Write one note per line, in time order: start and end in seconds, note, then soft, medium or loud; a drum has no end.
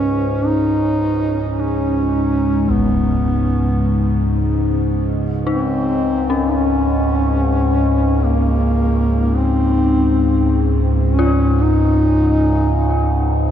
0.00 13.51 C#2 medium
0.00 13.51 G#2 medium
0.00 0.47 C#4 loud
0.46 1.50 D#4 loud
1.50 1.62 D#4 medium
1.60 2.73 C#4 medium
2.67 impact medium
2.71 4.36 B3 medium
5.47 6.51 C4 loud
5.47 6.53 D#4 medium
6.30 13.08 C#4 medium
6.49 6.58 D#4 medium
6.56 8.27 C#4 medium
8.26 9.38 A#3 medium
9.37 10.79 C4 loud
11.07 11.64 C#4 medium
11.19 13.51 F4 medium
11.62 13.34 D#4 loud